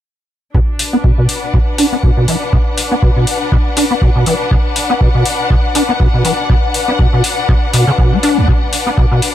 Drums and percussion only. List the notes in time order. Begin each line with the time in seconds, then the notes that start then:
0.55 kick
0.79 open hi-hat
1.04 kick
1.29 open hi-hat
1.54 kick
1.78 open hi-hat
2.03 kick
2.28 open hi-hat
2.53 kick
2.78 open hi-hat
3.02 kick
3.27 open hi-hat
3.52 kick
3.77 open hi-hat
4.02 kick
4.26 open hi-hat
4.51 kick
4.76 open hi-hat
5.01 kick
5.25 open hi-hat
5.50 kick
5.75 open hi-hat
6.00 kick
6.25 open hi-hat
6.50 kick
6.74 open hi-hat
6.99 kick
7.24 open hi-hat
7.49 kick
7.74 open hi-hat
7.98 kick
8.23 open hi-hat
8.48 kick
8.73 open hi-hat
8.98 kick
9.22 open hi-hat